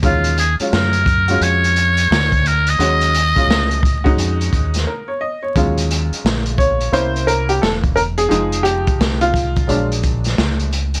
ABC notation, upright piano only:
X:1
M:4/4
L:1/16
Q:"Swing 16ths" 1/4=87
K:Ebm
V:1 name="Upright piano"
[G,A,DF]2 z [G,A,DF]2 z2 [A,DFG]4- [A,DFG] z4 | [G,A,DG]2 z [G,A,DF]2 z2 [A,DEG]4- [A,DEG] B d e d- | d z4 z d2 =c2 B =G =A2 B _A- | A2 =G3 F4 z6 z |]
V:2 name="Upright piano"
z16 | z16 | [G,A,DF]8 [B,D=E]6 z2 | [F,A,E]8 [^F,A,=D]6 z2 |]